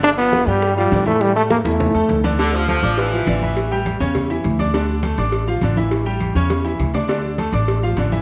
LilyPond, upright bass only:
\new Staff \with { instrumentName = "Upright bass" } { \clef bass \time 4/4 \key d \minor \tempo 4 = 204 g,,4. g,4. a,4~ | a,4. e,4 e,8 d,4~ | d,4. a,,4. a,,4~ | a,,4. e,4. d,4~ |
d,4. a,,4. a,,4~ | a,,4. e,4. d,4~ | d,4. a,,4. a,,4 | }